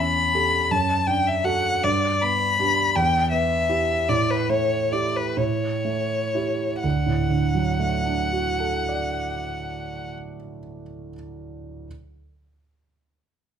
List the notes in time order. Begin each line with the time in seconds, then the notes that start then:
Already playing: E2 C#4 B5
0.35 G4 A4
0.71 F#2 A5
1.07 D4 G5
1.27 E5
1.44 F#4 A4 F#5
1.83 G2 D5
2.21 B3 B5
2.59 D4 G4
2.95 E2 G5
3.31 B3 E5
3.69 E4 G4
4.09 A2 D5
4.30 B4
4.49 A3 C#5
4.92 E4 G4 D5
5.16 B4
5.37 A2 C#5
5.85 A3
6.35 E4 G4
6.82 D2 F#5
7.06 A2
7.29 D3
7.55 F#3
7.79 A3
8.05 D4
8.32 F#4
8.60 A4
8.89 D5